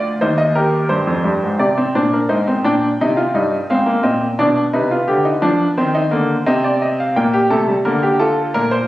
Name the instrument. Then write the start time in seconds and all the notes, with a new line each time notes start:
grand piano
Already playing: D2 F4
0.21 D#2 D#4 C5
0.38 D#5
0.55 G4 A#4
0.89 G2 C5
1.07 F2
1.24 G2
1.44 G#2
1.59 C3 G4 D5
1.78 C4
1.95 A#2 D4 C5
2.13 A#4
2.29 G#2 D#4 C5
2.48 C4
2.64 A#2 D4 G5
3.01 C3 D#4
3.17 F4
3.34 G2 D#4
3.70 G#2 C4 F5
3.86 A#3
4.03 A#2 C4 D#5
4.39 B2 D4 D5
4.73 C3 D#4 B4
4.91 F4
5.08 D3 G4
5.25 D#4
5.42 F3 D4
5.77 D#3 C4 C5
5.95 D#4
6.11 D3 A#3
6.46 C3 C4 D#5
6.64 D5
6.82 D#5
7.00 F5
7.16 A#2 A#3 G5
7.33 G4
7.50 C3 A3 A4
7.68 G3
7.85 D3 A#3 A#4
8.03 G4
8.19 F4 A4
8.54 A#2 A#4
8.71 C5